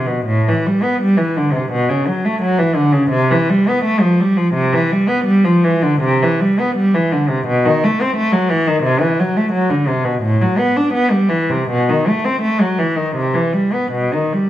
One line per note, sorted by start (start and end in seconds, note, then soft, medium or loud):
0.07 0.27 B2 soft
0.26 0.45 A2 medium
0.48 0.66 E3 medium
0.66 0.84 G3 soft
0.83 1.01 B3 medium
1.02 1.18 G3 medium
1.17 1.36 E3 medium
1.37 1.54 D3 medium
1.52 1.71 C3 soft
1.71 1.89 B2 medium
1.89 2.07 C#3 medium
2.08 2.25 F#3 medium
2.25 2.42 A3 medium
2.42 2.59 F#3 medium
2.58 2.77 E3 medium
2.75 2.94 D3 medium
2.92 3.12 C#3 medium
3.10 3.29 C3 medium
3.31 3.49 E3 medium
3.50 3.67 G3 medium
3.69 3.86 B3 medium
3.84 4.02 A3 medium
4.01 4.20 F3 medium
4.20 4.38 G3 medium
4.37 4.55 F3 medium
4.54 4.72 C3 medium
4.73 4.91 E3 medium
4.92 5.09 G3 medium
5.08 5.26 B3 medium
5.25 5.43 G3 medium
5.45 5.63 F3 medium
5.64 5.83 E3 medium
5.82 6.02 D3 medium
6.01 6.20 C3 medium
6.23 6.40 E3 medium
6.41 6.58 G3 medium
6.60 6.76 B3 medium
6.75 6.92 G3 medium
6.94 7.10 E3 medium
7.12 7.28 D3 medium
7.29 7.45 C3 medium
7.47 7.62 B2 medium
7.65 7.81 D#3 medium
7.84 7.99 A3 medium
8.02 8.16 C4 medium
8.16 8.32 A3 medium
8.32 8.49 F#3 medium
8.50 8.66 E3 medium
8.67 8.84 D#3 medium
8.83 9.00 C3 medium
9.01 9.18 E3 medium
9.20 9.36 F#3 medium
9.37 9.53 A3 medium
9.52 9.69 F#3 medium
9.70 9.87 D3 medium
9.88 10.05 C3 medium
10.04 10.22 B2 medium
10.22 10.39 A2 medium
10.42 10.58 F#3 medium
10.59 10.75 B3 medium
10.77 10.93 D4 medium
10.93 11.10 B3 medium
11.11 11.29 G3 medium
11.29 11.48 E3 medium
11.50 11.69 C3 medium
11.70 11.88 B2 medium
11.89 12.07 D#3 medium
12.08 12.26 A3 soft
12.25 12.43 C4 medium
12.42 12.60 A3 medium
12.61 12.79 F#3 soft
12.78 12.97 E3 soft
12.96 13.15 D#3 soft
13.15 13.34 C3 medium
13.34 13.53 E3 soft
13.53 13.72 G3 soft
13.73 13.92 B3 soft
13.92 14.11 B2 medium
14.13 14.33 D#3 soft
14.33 14.50 G3 soft